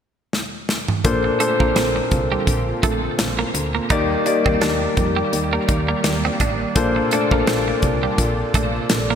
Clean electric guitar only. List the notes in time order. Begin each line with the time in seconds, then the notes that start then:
1.24 muted clean electric guitar stroke
1.40 A3
1.60 A#3
1.76 C4
1.96 muted clean electric guitar stroke
2.32 G3
2.84 A3
3.39 A#3
3.55 muted clean electric guitar stroke
3.75 A#3
3.90 D#4
4.26 muted clean electric guitar stroke
4.46 C4
4.62 D4
4.97 muted clean electric guitar stroke
5.17 G3
5.53 A#3
5.69 muted clean electric guitar stroke
5.89 A#3
6.05 muted clean electric guitar stroke
6.25 C4
6.41 D4
6.96 muted clean electric guitar stroke
7.13 A3
7.32 A#3
7.48 C4
7.68 muted clean electric guitar stroke
8.03 G3
8.55 A3
9.10 A#3